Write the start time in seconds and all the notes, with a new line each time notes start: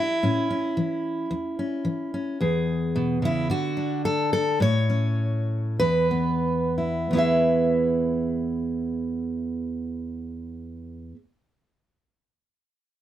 Already playing: E3 E4
0.23 A2 C#4
0.50 C#4
0.77 E3
1.31 E2
1.59 C#4
1.85 E3
2.14 C#4
2.41 E2 G#4
2.96 B2
3.22 C#3 E4
3.50 D3 F#4
3.77 D4
4.05 A4
4.33 A4
4.60 A2 C#5
4.90 C#4
5.80 E2 B4
6.11 B3
6.78 E4
7.11 E2 B3
7.15 E4 G#4 E5